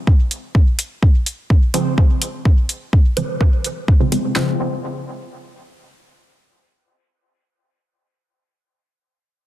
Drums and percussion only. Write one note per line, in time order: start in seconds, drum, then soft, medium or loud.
0.07 kick loud
0.31 open hi-hat medium
0.55 kick loud
0.79 open hi-hat medium
1.03 kick medium
1.26 open hi-hat medium
1.50 kick loud
1.74 open hi-hat medium
1.98 kick medium
2.22 open hi-hat medium
2.45 kick loud
2.69 open hi-hat medium
2.93 kick medium
3.17 open hi-hat medium
3.41 kick loud
3.64 open hi-hat medium
3.88 kick medium
4.12 open hi-hat medium
4.36 snare loud
4.36 clap medium